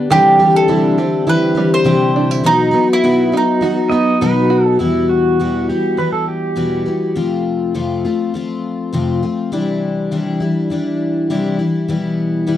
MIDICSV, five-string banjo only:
0, 0, Header, 1, 2, 480
1, 0, Start_track
1, 0, Key_signature, 1, "minor"
1, 0, Tempo, 588813
1, 86, Time_signature, 4, 2, 24, 8
1, 10250, End_track
2, 0, Start_track
2, 0, Title_t, "Five-string banjo"
2, 0, Program_c, 0, 105
2, 0, Note_on_c, 0, 55, 64
2, 0, Note_on_c, 0, 59, 67
2, 0, Note_on_c, 0, 62, 58
2, 86, Note_on_c, 0, 50, 89
2, 132, Note_off_c, 0, 62, 0
2, 133, Note_off_c, 0, 59, 0
2, 134, Note_off_c, 0, 55, 0
2, 324, Note_on_c, 0, 55, 54
2, 565, Note_on_c, 0, 64, 66
2, 802, Note_on_c, 0, 60, 58
2, 1027, Note_off_c, 0, 64, 0
2, 1037, Note_on_c, 0, 64, 62
2, 1273, Note_off_c, 0, 55, 0
2, 1283, Note_on_c, 0, 55, 65
2, 1503, Note_off_c, 0, 60, 0
2, 1513, Note_on_c, 0, 60, 69
2, 1757, Note_off_c, 0, 64, 0
2, 1760, Note_on_c, 0, 62, 59
2, 1882, Note_off_c, 0, 62, 0
2, 1882, Note_on_c, 0, 64, 68
2, 2002, Note_off_c, 0, 50, 0
2, 2045, Note_off_c, 0, 60, 0
2, 2049, Note_off_c, 0, 55, 0
2, 2049, Note_off_c, 0, 64, 0
2, 2240, Note_on_c, 0, 59, 49
2, 2483, Note_on_c, 0, 66, 60
2, 2718, Note_on_c, 0, 63, 64
2, 2943, Note_off_c, 0, 66, 0
2, 2953, Note_on_c, 0, 66, 56
2, 3183, Note_off_c, 0, 59, 0
2, 3192, Note_on_c, 0, 59, 60
2, 3425, Note_off_c, 0, 63, 0
2, 3435, Note_on_c, 0, 63, 54
2, 3658, Note_off_c, 0, 66, 0
2, 3668, Note_on_c, 0, 66, 59
2, 3962, Note_off_c, 0, 66, 0
2, 3963, Note_off_c, 0, 59, 0
2, 3965, Note_off_c, 0, 63, 0
2, 10250, End_track
0, 0, End_of_file